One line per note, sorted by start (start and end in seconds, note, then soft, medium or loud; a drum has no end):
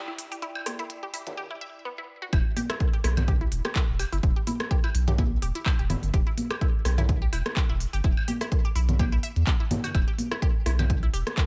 0.00 1.38 E4 medium
0.00 1.38 D5 medium
0.00 1.38 G5 medium
0.08 0.12 E4 medium
0.19 open hi-hat loud
0.32 0.35 G4 medium
0.32 open hi-hat soft
0.42 0.47 E4 medium
0.42 closed hi-hat medium
0.55 high woodblock medium
0.66 0.71 G4 medium
0.66 cross-stick medium
0.66 open hi-hat loud
0.66 high conga medium
0.79 0.83 E4 medium
0.79 closed hi-hat soft
0.90 closed hi-hat medium
1.03 1.07 G4 medium
1.14 1.18 E4 medium
1.14 open hi-hat loud
1.27 closed hi-hat soft
1.27 low conga medium
1.37 1.42 G4 medium
1.51 1.54 E4 medium
1.61 1.66 E5 medium
1.85 1.92 B3 medium
1.98 2.02 E4 medium
2.22 2.24 F#4 medium
2.33 2.42 E1 loud
2.33 2.37 E4 medium
2.33 kick loud
2.33 closed hi-hat medium
2.33 high woodblock medium
2.57 2.61 G4 medium
2.57 open hi-hat loud
2.57 high conga medium
2.70 2.73 E4 medium
2.70 cross-stick medium
2.70 closed hi-hat soft
2.80 kick loud
2.80 closed hi-hat medium
2.93 2.97 G4 medium
3.04 3.46 B1 loud
3.04 3.09 E4 medium
3.04 cross-stick medium
3.04 open hi-hat loud
3.17 closed hi-hat soft
3.17 low conga medium
3.17 high woodblock medium
3.28 3.33 G4 medium
3.28 kick loud
3.28 closed hi-hat medium
3.41 3.45 E4 medium
3.52 3.61 E1 loud
3.52 open hi-hat loud
3.65 3.69 G4 medium
3.65 cross-stick medium
3.65 closed hi-hat soft
3.76 3.80 E4 medium
3.76 kick loud
3.76 clap loud
3.76 closed hi-hat medium
3.89 4.04 E1 medium
3.99 4.04 G4 medium
3.99 open hi-hat loud
3.99 high woodblock medium
4.12 4.20 G1 loud
4.12 4.16 E4 medium
4.12 open hi-hat soft
4.23 4.32 E1 loud
4.23 kick loud
4.23 closed hi-hat medium
4.36 4.40 G4 medium
4.47 4.52 E4 medium
4.47 open hi-hat medium
4.47 high conga medium
4.60 cross-stick medium
4.60 closed hi-hat soft
4.71 4.75 G4 medium
4.71 kick loud
4.71 closed hi-hat medium
4.84 4.88 E4 medium
4.84 high woodblock medium
4.95 5.37 B1 loud
4.95 open hi-hat loud
5.08 5.12 G4 medium
5.08 closed hi-hat soft
5.08 low conga medium
5.18 5.23 E4 medium
5.18 kick loud
5.18 closed hi-hat medium
5.18 high conga medium
5.42 5.51 E1 loud
5.42 5.47 G4 medium
5.42 open hi-hat medium
5.55 5.59 E4 medium
5.55 closed hi-hat soft
5.66 kick loud
5.66 clap loud
5.66 closed hi-hat medium
5.66 high woodblock medium
5.79 5.95 E1 medium
5.79 5.83 G4 medium
5.90 5.95 E4 medium
5.90 open hi-hat loud
5.90 low conga medium
6.03 6.10 G1 loud
6.03 open hi-hat soft
6.14 6.23 E1 loud
6.14 6.18 G4 medium
6.14 kick loud
6.14 closed hi-hat medium
6.27 6.31 E4 medium
6.37 open hi-hat loud
6.37 high conga medium
6.50 6.54 G4 medium
6.50 cross-stick medium
6.50 closed hi-hat soft
6.50 high woodblock medium
6.61 6.66 E4 medium
6.61 kick loud
6.61 closed hi-hat medium
6.85 7.27 B1 loud
6.85 6.90 G4 medium
6.85 cross-stick medium
6.85 open hi-hat loud
6.98 7.02 E4 medium
6.98 closed hi-hat soft
6.98 low conga medium
7.09 kick loud
7.09 closed hi-hat medium
7.22 7.26 G4 medium
7.33 7.42 E1 loud
7.33 7.37 E4 medium
7.33 open hi-hat medium
7.33 high woodblock medium
7.46 cross-stick medium
7.46 closed hi-hat soft
7.56 7.61 G4 medium
7.56 kick loud
7.56 clap loud
7.56 closed hi-hat medium
7.69 7.85 E1 medium
7.69 7.73 E4 medium
7.80 open hi-hat loud
7.93 8.01 G1 loud
7.93 7.97 G4 medium
7.93 open hi-hat soft
8.04 8.13 E1 loud
8.04 8.09 E4 medium
8.04 kick loud
8.04 closed hi-hat soft
8.17 high woodblock medium
8.28 8.33 G4 medium
8.28 open hi-hat medium
8.28 high conga medium
8.41 8.45 E4 medium
8.41 cross-stick medium
8.41 open hi-hat soft
8.52 kick loud
8.52 closed hi-hat soft
8.65 8.69 G4 medium
8.75 9.18 B1 loud
8.75 8.80 E4 medium
8.75 open hi-hat loud
8.89 closed hi-hat soft
8.89 low conga medium
8.99 9.04 G4 medium
8.99 kick loud
8.99 closed hi-hat soft
8.99 high conga medium
8.99 high woodblock medium
9.12 9.16 E4 medium
9.23 9.28 E5 medium
9.23 open hi-hat medium
9.36 9.44 E2 loud
9.36 closed hi-hat soft
9.47 9.54 B3 medium
9.47 kick loud
9.47 clap loud
9.47 closed hi-hat medium
9.60 9.64 E4 medium
9.71 open hi-hat loud
9.71 high conga medium
9.71 low conga medium
9.84 9.86 F#4 medium
9.84 open hi-hat soft
9.84 high woodblock medium
9.95 10.04 E1 loud
9.95 9.99 E4 medium
9.95 kick loud
9.95 closed hi-hat medium
9.95 high woodblock medium
10.08 10.11 G4 medium
10.18 open hi-hat loud
10.18 high conga medium
10.31 10.35 E4 medium
10.31 cross-stick medium
10.31 closed hi-hat soft
10.42 10.47 G4 medium
10.42 kick loud
10.42 closed hi-hat medium
10.66 11.08 B1 loud
10.66 10.71 E4 medium
10.66 cross-stick medium
10.66 open hi-hat loud
10.79 10.83 G4 medium
10.79 closed hi-hat soft
10.79 low conga medium
10.79 high woodblock medium
10.90 kick loud
10.90 closed hi-hat medium
11.03 11.07 E4 medium
11.13 11.23 E1 loud
11.13 11.18 G4 medium
11.13 open hi-hat loud
11.27 cross-stick medium
11.27 closed hi-hat soft
11.37 11.42 E4 medium
11.37 kick loud
11.37 clap loud
11.37 closed hi-hat medium